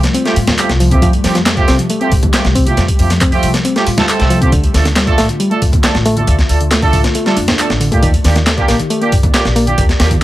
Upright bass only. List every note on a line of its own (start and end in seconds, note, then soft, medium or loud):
0.36 0.44 A2 medium
0.69 0.97 C2 medium
1.02 1.18 F2 loud
1.24 1.63 F2 medium
1.68 1.76 C2 medium
2.12 2.19 A2 medium
2.44 2.72 C2 medium
2.77 2.93 F2 loud
2.99 3.38 F2 medium
3.43 3.51 C2 medium
3.87 3.95 A2 medium
4.20 4.47 C2 medium
4.52 4.68 D2 loud
4.74 5.13 D2 medium
5.18 5.26 A1 medium
5.62 5.70 F2 medium
5.95 6.23 A1 medium
6.28 6.43 D2 loud
6.49 6.88 D2 medium
6.93 7.01 A1 medium
7.37 7.45 F2 medium
7.70 7.98 A1 medium
8.03 8.18 D#2 loud
8.24 8.63 D#2 medium
8.68 8.76 A#1 medium
9.12 9.20 G2 medium
9.45 9.73 A#1 medium
9.78 9.94 D#2 loud
10.00 10.23 D#2 medium